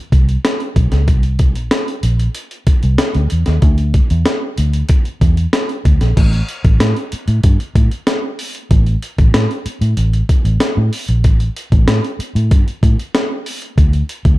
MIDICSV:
0, 0, Header, 1, 4, 480
1, 0, Start_track
1, 0, Tempo, 634921
1, 815, Time_signature, 4, 2, 24, 8
1, 10875, End_track
2, 0, Start_track
2, 0, Title_t, "Fingered electric bass"
2, 0, Program_c, 0, 33
2, 91, Note_on_c, 0, 36, 98
2, 272, Note_off_c, 0, 36, 0
2, 576, Note_on_c, 0, 35, 83
2, 665, Note_off_c, 0, 35, 0
2, 697, Note_on_c, 0, 37, 90
2, 813, Note_off_c, 0, 37, 0
2, 813, Note_on_c, 0, 36, 106
2, 1178, Note_off_c, 0, 36, 0
2, 1178, Note_on_c, 0, 34, 98
2, 1267, Note_off_c, 0, 34, 0
2, 1536, Note_on_c, 0, 34, 76
2, 1716, Note_off_c, 0, 34, 0
2, 2143, Note_on_c, 0, 36, 88
2, 2231, Note_off_c, 0, 36, 0
2, 2382, Note_on_c, 0, 38, 89
2, 2471, Note_off_c, 0, 38, 0
2, 2510, Note_on_c, 0, 40, 73
2, 2596, Note_off_c, 0, 40, 0
2, 2628, Note_on_c, 0, 39, 92
2, 2715, Note_off_c, 0, 39, 0
2, 2739, Note_on_c, 0, 38, 118
2, 3009, Note_off_c, 0, 38, 0
2, 3106, Note_on_c, 0, 40, 98
2, 3194, Note_off_c, 0, 40, 0
2, 3464, Note_on_c, 0, 38, 86
2, 3643, Note_off_c, 0, 38, 0
2, 3942, Note_on_c, 0, 40, 108
2, 4122, Note_off_c, 0, 40, 0
2, 4426, Note_on_c, 0, 38, 87
2, 4515, Note_off_c, 0, 38, 0
2, 4545, Note_on_c, 0, 34, 78
2, 4634, Note_off_c, 0, 34, 0
2, 4665, Note_on_c, 0, 33, 112
2, 4844, Note_off_c, 0, 33, 0
2, 5024, Note_on_c, 0, 33, 93
2, 5114, Note_off_c, 0, 33, 0
2, 5144, Note_on_c, 0, 45, 105
2, 5233, Note_off_c, 0, 45, 0
2, 5501, Note_on_c, 0, 45, 98
2, 5592, Note_off_c, 0, 45, 0
2, 5622, Note_on_c, 0, 43, 106
2, 5713, Note_off_c, 0, 43, 0
2, 5863, Note_on_c, 0, 45, 101
2, 5953, Note_off_c, 0, 45, 0
2, 6584, Note_on_c, 0, 33, 115
2, 6762, Note_off_c, 0, 33, 0
2, 6945, Note_on_c, 0, 33, 100
2, 7034, Note_off_c, 0, 33, 0
2, 7058, Note_on_c, 0, 45, 100
2, 7149, Note_off_c, 0, 45, 0
2, 7417, Note_on_c, 0, 45, 91
2, 7509, Note_off_c, 0, 45, 0
2, 7538, Note_on_c, 0, 33, 102
2, 7719, Note_off_c, 0, 33, 0
2, 7897, Note_on_c, 0, 33, 85
2, 7988, Note_off_c, 0, 33, 0
2, 8143, Note_on_c, 0, 45, 110
2, 8231, Note_off_c, 0, 45, 0
2, 8381, Note_on_c, 0, 34, 79
2, 8503, Note_off_c, 0, 34, 0
2, 8503, Note_on_c, 0, 33, 106
2, 8680, Note_off_c, 0, 33, 0
2, 8859, Note_on_c, 0, 33, 106
2, 8949, Note_off_c, 0, 33, 0
2, 8974, Note_on_c, 0, 45, 96
2, 9065, Note_off_c, 0, 45, 0
2, 9339, Note_on_c, 0, 45, 102
2, 9460, Note_off_c, 0, 45, 0
2, 9460, Note_on_c, 0, 43, 104
2, 9548, Note_off_c, 0, 43, 0
2, 9699, Note_on_c, 0, 45, 103
2, 9787, Note_off_c, 0, 45, 0
2, 10415, Note_on_c, 0, 38, 119
2, 10594, Note_off_c, 0, 38, 0
2, 10772, Note_on_c, 0, 38, 89
2, 10863, Note_off_c, 0, 38, 0
2, 10875, End_track
3, 0, Start_track
3, 0, Title_t, "Muted fingered electric bass strokes"
3, 2016, Note_on_c, 9, 29, 51
3, 2092, Note_off_c, 9, 29, 0
3, 5390, Note_on_c, 9, 29, 46
3, 5465, Note_off_c, 9, 29, 0
3, 7300, Note_on_c, 9, 29, 45
3, 7376, Note_off_c, 9, 29, 0
3, 9216, Note_on_c, 9, 29, 50
3, 9292, Note_off_c, 9, 29, 0
3, 10875, End_track
4, 0, Start_track
4, 0, Title_t, "Drums"
4, 93, Note_on_c, 9, 36, 91
4, 96, Note_on_c, 9, 42, 76
4, 169, Note_off_c, 9, 36, 0
4, 172, Note_off_c, 9, 42, 0
4, 217, Note_on_c, 9, 42, 46
4, 292, Note_off_c, 9, 42, 0
4, 338, Note_on_c, 9, 38, 112
4, 339, Note_on_c, 9, 42, 98
4, 413, Note_off_c, 9, 38, 0
4, 415, Note_off_c, 9, 42, 0
4, 455, Note_on_c, 9, 42, 34
4, 531, Note_off_c, 9, 42, 0
4, 575, Note_on_c, 9, 36, 93
4, 576, Note_on_c, 9, 42, 75
4, 651, Note_off_c, 9, 36, 0
4, 652, Note_off_c, 9, 42, 0
4, 693, Note_on_c, 9, 42, 54
4, 695, Note_on_c, 9, 38, 38
4, 769, Note_off_c, 9, 42, 0
4, 770, Note_off_c, 9, 38, 0
4, 815, Note_on_c, 9, 36, 94
4, 815, Note_on_c, 9, 42, 73
4, 890, Note_off_c, 9, 42, 0
4, 891, Note_off_c, 9, 36, 0
4, 931, Note_on_c, 9, 42, 38
4, 1006, Note_off_c, 9, 42, 0
4, 1051, Note_on_c, 9, 42, 76
4, 1054, Note_on_c, 9, 36, 92
4, 1126, Note_off_c, 9, 42, 0
4, 1130, Note_off_c, 9, 36, 0
4, 1175, Note_on_c, 9, 42, 52
4, 1251, Note_off_c, 9, 42, 0
4, 1293, Note_on_c, 9, 38, 122
4, 1295, Note_on_c, 9, 42, 92
4, 1369, Note_off_c, 9, 38, 0
4, 1371, Note_off_c, 9, 42, 0
4, 1421, Note_on_c, 9, 42, 38
4, 1497, Note_off_c, 9, 42, 0
4, 1535, Note_on_c, 9, 42, 84
4, 1610, Note_off_c, 9, 42, 0
4, 1659, Note_on_c, 9, 42, 47
4, 1735, Note_off_c, 9, 42, 0
4, 1773, Note_on_c, 9, 42, 101
4, 1848, Note_off_c, 9, 42, 0
4, 1898, Note_on_c, 9, 42, 41
4, 1973, Note_off_c, 9, 42, 0
4, 2015, Note_on_c, 9, 42, 87
4, 2016, Note_on_c, 9, 36, 94
4, 2091, Note_off_c, 9, 42, 0
4, 2092, Note_off_c, 9, 36, 0
4, 2137, Note_on_c, 9, 42, 49
4, 2213, Note_off_c, 9, 42, 0
4, 2255, Note_on_c, 9, 38, 117
4, 2257, Note_on_c, 9, 42, 101
4, 2331, Note_off_c, 9, 38, 0
4, 2332, Note_off_c, 9, 42, 0
4, 2377, Note_on_c, 9, 42, 34
4, 2453, Note_off_c, 9, 42, 0
4, 2494, Note_on_c, 9, 42, 80
4, 2570, Note_off_c, 9, 42, 0
4, 2614, Note_on_c, 9, 42, 52
4, 2616, Note_on_c, 9, 38, 38
4, 2690, Note_off_c, 9, 42, 0
4, 2691, Note_off_c, 9, 38, 0
4, 2737, Note_on_c, 9, 42, 69
4, 2739, Note_on_c, 9, 36, 97
4, 2812, Note_off_c, 9, 42, 0
4, 2814, Note_off_c, 9, 36, 0
4, 2856, Note_on_c, 9, 42, 37
4, 2932, Note_off_c, 9, 42, 0
4, 2979, Note_on_c, 9, 42, 73
4, 2980, Note_on_c, 9, 36, 84
4, 3054, Note_off_c, 9, 42, 0
4, 3055, Note_off_c, 9, 36, 0
4, 3101, Note_on_c, 9, 42, 52
4, 3177, Note_off_c, 9, 42, 0
4, 3217, Note_on_c, 9, 38, 110
4, 3219, Note_on_c, 9, 42, 87
4, 3293, Note_off_c, 9, 38, 0
4, 3295, Note_off_c, 9, 42, 0
4, 3459, Note_on_c, 9, 42, 81
4, 3535, Note_off_c, 9, 42, 0
4, 3580, Note_on_c, 9, 42, 51
4, 3655, Note_off_c, 9, 42, 0
4, 3694, Note_on_c, 9, 42, 100
4, 3700, Note_on_c, 9, 36, 106
4, 3769, Note_off_c, 9, 42, 0
4, 3776, Note_off_c, 9, 36, 0
4, 3820, Note_on_c, 9, 42, 43
4, 3896, Note_off_c, 9, 42, 0
4, 3942, Note_on_c, 9, 36, 93
4, 3944, Note_on_c, 9, 42, 73
4, 4017, Note_off_c, 9, 36, 0
4, 4019, Note_off_c, 9, 42, 0
4, 4062, Note_on_c, 9, 42, 47
4, 4138, Note_off_c, 9, 42, 0
4, 4181, Note_on_c, 9, 38, 109
4, 4182, Note_on_c, 9, 42, 93
4, 4257, Note_off_c, 9, 38, 0
4, 4258, Note_off_c, 9, 42, 0
4, 4304, Note_on_c, 9, 42, 34
4, 4379, Note_off_c, 9, 42, 0
4, 4424, Note_on_c, 9, 36, 88
4, 4425, Note_on_c, 9, 42, 76
4, 4500, Note_off_c, 9, 36, 0
4, 4501, Note_off_c, 9, 42, 0
4, 4543, Note_on_c, 9, 42, 52
4, 4544, Note_on_c, 9, 38, 38
4, 4618, Note_off_c, 9, 42, 0
4, 4620, Note_off_c, 9, 38, 0
4, 4665, Note_on_c, 9, 36, 93
4, 4665, Note_on_c, 9, 42, 76
4, 4665, Note_on_c, 9, 49, 89
4, 4740, Note_off_c, 9, 36, 0
4, 4741, Note_off_c, 9, 42, 0
4, 4741, Note_off_c, 9, 49, 0
4, 4784, Note_on_c, 9, 42, 36
4, 4860, Note_off_c, 9, 42, 0
4, 4903, Note_on_c, 9, 42, 75
4, 4979, Note_off_c, 9, 42, 0
4, 5024, Note_on_c, 9, 42, 53
4, 5025, Note_on_c, 9, 36, 96
4, 5100, Note_off_c, 9, 36, 0
4, 5100, Note_off_c, 9, 42, 0
4, 5143, Note_on_c, 9, 38, 102
4, 5145, Note_on_c, 9, 42, 97
4, 5219, Note_off_c, 9, 38, 0
4, 5221, Note_off_c, 9, 42, 0
4, 5266, Note_on_c, 9, 42, 37
4, 5341, Note_off_c, 9, 42, 0
4, 5382, Note_on_c, 9, 42, 79
4, 5458, Note_off_c, 9, 42, 0
4, 5501, Note_on_c, 9, 42, 53
4, 5576, Note_off_c, 9, 42, 0
4, 5621, Note_on_c, 9, 42, 103
4, 5624, Note_on_c, 9, 36, 105
4, 5696, Note_off_c, 9, 42, 0
4, 5699, Note_off_c, 9, 36, 0
4, 5746, Note_on_c, 9, 42, 44
4, 5821, Note_off_c, 9, 42, 0
4, 5863, Note_on_c, 9, 36, 103
4, 5863, Note_on_c, 9, 42, 89
4, 5938, Note_off_c, 9, 36, 0
4, 5939, Note_off_c, 9, 42, 0
4, 5984, Note_on_c, 9, 42, 53
4, 6059, Note_off_c, 9, 42, 0
4, 6100, Note_on_c, 9, 38, 109
4, 6101, Note_on_c, 9, 42, 102
4, 6176, Note_off_c, 9, 38, 0
4, 6177, Note_off_c, 9, 42, 0
4, 6342, Note_on_c, 9, 46, 85
4, 6418, Note_off_c, 9, 46, 0
4, 6462, Note_on_c, 9, 42, 52
4, 6538, Note_off_c, 9, 42, 0
4, 6583, Note_on_c, 9, 36, 98
4, 6583, Note_on_c, 9, 42, 80
4, 6658, Note_off_c, 9, 42, 0
4, 6659, Note_off_c, 9, 36, 0
4, 6702, Note_on_c, 9, 42, 33
4, 6777, Note_off_c, 9, 42, 0
4, 6823, Note_on_c, 9, 42, 77
4, 6898, Note_off_c, 9, 42, 0
4, 6943, Note_on_c, 9, 42, 52
4, 6944, Note_on_c, 9, 36, 107
4, 7019, Note_off_c, 9, 36, 0
4, 7019, Note_off_c, 9, 42, 0
4, 7061, Note_on_c, 9, 38, 110
4, 7064, Note_on_c, 9, 42, 103
4, 7137, Note_off_c, 9, 38, 0
4, 7139, Note_off_c, 9, 42, 0
4, 7188, Note_on_c, 9, 42, 34
4, 7264, Note_off_c, 9, 42, 0
4, 7301, Note_on_c, 9, 42, 79
4, 7377, Note_off_c, 9, 42, 0
4, 7421, Note_on_c, 9, 42, 53
4, 7496, Note_off_c, 9, 42, 0
4, 7538, Note_on_c, 9, 42, 95
4, 7613, Note_off_c, 9, 42, 0
4, 7662, Note_on_c, 9, 42, 43
4, 7737, Note_off_c, 9, 42, 0
4, 7781, Note_on_c, 9, 36, 91
4, 7781, Note_on_c, 9, 42, 82
4, 7856, Note_off_c, 9, 36, 0
4, 7857, Note_off_c, 9, 42, 0
4, 7902, Note_on_c, 9, 42, 49
4, 7977, Note_off_c, 9, 42, 0
4, 8016, Note_on_c, 9, 38, 101
4, 8018, Note_on_c, 9, 42, 100
4, 8092, Note_off_c, 9, 38, 0
4, 8094, Note_off_c, 9, 42, 0
4, 8261, Note_on_c, 9, 46, 83
4, 8336, Note_off_c, 9, 46, 0
4, 8380, Note_on_c, 9, 42, 52
4, 8455, Note_off_c, 9, 42, 0
4, 8499, Note_on_c, 9, 42, 76
4, 8501, Note_on_c, 9, 36, 89
4, 8574, Note_off_c, 9, 42, 0
4, 8576, Note_off_c, 9, 36, 0
4, 8619, Note_on_c, 9, 42, 36
4, 8695, Note_off_c, 9, 42, 0
4, 8743, Note_on_c, 9, 42, 77
4, 8819, Note_off_c, 9, 42, 0
4, 8861, Note_on_c, 9, 36, 95
4, 8862, Note_on_c, 9, 42, 55
4, 8937, Note_off_c, 9, 36, 0
4, 8937, Note_off_c, 9, 42, 0
4, 8978, Note_on_c, 9, 38, 110
4, 8981, Note_on_c, 9, 42, 92
4, 9054, Note_off_c, 9, 38, 0
4, 9056, Note_off_c, 9, 42, 0
4, 9105, Note_on_c, 9, 42, 35
4, 9181, Note_off_c, 9, 42, 0
4, 9223, Note_on_c, 9, 42, 77
4, 9299, Note_off_c, 9, 42, 0
4, 9345, Note_on_c, 9, 42, 52
4, 9421, Note_off_c, 9, 42, 0
4, 9459, Note_on_c, 9, 42, 94
4, 9460, Note_on_c, 9, 36, 112
4, 9535, Note_off_c, 9, 42, 0
4, 9536, Note_off_c, 9, 36, 0
4, 9584, Note_on_c, 9, 42, 44
4, 9660, Note_off_c, 9, 42, 0
4, 9699, Note_on_c, 9, 36, 96
4, 9703, Note_on_c, 9, 42, 78
4, 9774, Note_off_c, 9, 36, 0
4, 9779, Note_off_c, 9, 42, 0
4, 9824, Note_on_c, 9, 42, 48
4, 9900, Note_off_c, 9, 42, 0
4, 9939, Note_on_c, 9, 38, 112
4, 9940, Note_on_c, 9, 42, 88
4, 10014, Note_off_c, 9, 38, 0
4, 10016, Note_off_c, 9, 42, 0
4, 10177, Note_on_c, 9, 46, 84
4, 10253, Note_off_c, 9, 46, 0
4, 10296, Note_on_c, 9, 42, 51
4, 10372, Note_off_c, 9, 42, 0
4, 10415, Note_on_c, 9, 36, 90
4, 10417, Note_on_c, 9, 42, 77
4, 10490, Note_off_c, 9, 36, 0
4, 10493, Note_off_c, 9, 42, 0
4, 10533, Note_on_c, 9, 42, 39
4, 10609, Note_off_c, 9, 42, 0
4, 10654, Note_on_c, 9, 42, 83
4, 10730, Note_off_c, 9, 42, 0
4, 10773, Note_on_c, 9, 42, 51
4, 10774, Note_on_c, 9, 36, 104
4, 10849, Note_off_c, 9, 42, 0
4, 10850, Note_off_c, 9, 36, 0
4, 10875, End_track
0, 0, End_of_file